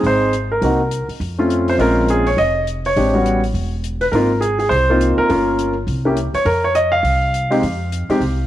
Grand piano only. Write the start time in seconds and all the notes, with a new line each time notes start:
Already playing: G#3 C4 D#4 G#4
0.06 C5
0.52 A#4
0.63 A#3 C4 D#4 F#4
1.38 A3 C4 C#4 F4
1.69 C5
1.79 G#3 C4 C#4 F4 A#4
2.10 G#4
2.27 C#5
2.38 D#5
2.86 C#5
2.97 G#3 C4 D4 G4
3.14 G3 B3 C#4 F#4
4.01 B4
4.12 A#3 C4 D#4 F4 A#4
4.41 G#4
4.59 G#4
4.69 C5
4.90 A#3 C4 D#4 F4
5.18 A#4
5.30 A#3 C#4 F4 A#4
6.05 A#3 C#4 E4 G4
6.35 C#5
6.46 A#4
6.64 C#5
6.75 D#5
6.92 F5
7.50 G#3 C4 D#4 G4
8.10 G#3 C4 D#4 G4